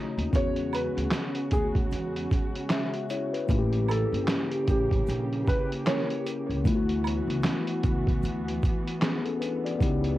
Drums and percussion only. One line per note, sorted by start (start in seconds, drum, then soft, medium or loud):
0.19 closed hi-hat soft
0.33 kick loud
0.33 closed hi-hat medium
0.33 shaker medium
0.56 closed hi-hat soft
0.73 closed hi-hat medium
0.73 high woodblock medium
0.73 shaker medium
0.98 closed hi-hat soft
1.11 snare loud
1.11 clap medium
1.11 closed hi-hat medium
1.11 shaker medium
1.35 closed hi-hat medium
1.51 kick medium
1.51 closed hi-hat medium
1.51 shaker medium
1.75 kick medium
1.75 closed hi-hat soft
1.91 closed hi-hat medium
1.91 shaker medium
2.16 closed hi-hat soft
2.31 kick loud
2.31 closed hi-hat medium
2.31 shaker soft
2.55 closed hi-hat medium
2.69 snare loud
2.69 clap medium
2.69 closed hi-hat medium
2.69 shaker medium
2.94 closed hi-hat soft
3.09 closed hi-hat medium
3.09 shaker medium
3.34 closed hi-hat soft
3.48 kick loud
3.48 closed hi-hat medium
3.48 shaker medium
3.73 closed hi-hat soft
3.89 closed hi-hat medium
3.89 high woodblock medium
3.89 shaker soft
4.14 closed hi-hat soft
4.27 snare loud
4.27 clap medium
4.27 closed hi-hat medium
4.27 shaker medium
4.52 closed hi-hat soft
4.68 kick loud
4.68 closed hi-hat medium
4.68 shaker medium
4.91 kick medium
4.91 closed hi-hat soft
5.07 closed hi-hat medium
5.07 shaker medium
5.33 closed hi-hat soft
5.47 kick loud
5.47 closed hi-hat medium
5.47 shaker soft
5.72 closed hi-hat medium
5.86 snare loud
5.86 clap medium
5.86 closed hi-hat medium
5.86 shaker medium
6.10 closed hi-hat soft
6.26 closed hi-hat medium
6.26 shaker medium
6.50 closed hi-hat soft
6.65 kick loud
6.65 closed hi-hat medium
6.65 shaker medium
6.89 closed hi-hat soft
7.04 closed hi-hat medium
7.04 high woodblock medium
7.04 shaker medium
7.30 closed hi-hat soft
7.43 snare medium
7.43 clap medium
7.43 closed hi-hat medium
7.43 shaker medium
7.67 closed hi-hat soft
7.83 kick loud
7.83 closed hi-hat medium
7.83 shaker medium
8.07 kick medium
8.07 closed hi-hat soft
8.23 closed hi-hat medium
8.23 shaker medium
8.48 closed hi-hat soft
8.63 kick loud
8.63 closed hi-hat medium
8.63 shaker soft
8.88 closed hi-hat medium
9.02 snare loud
9.02 clap medium
9.02 closed hi-hat medium
9.02 shaker medium
9.25 closed hi-hat soft
9.42 closed hi-hat medium
9.42 shaker medium
9.66 closed hi-hat soft
9.80 kick loud
9.80 closed hi-hat medium
9.80 shaker medium
10.04 closed hi-hat soft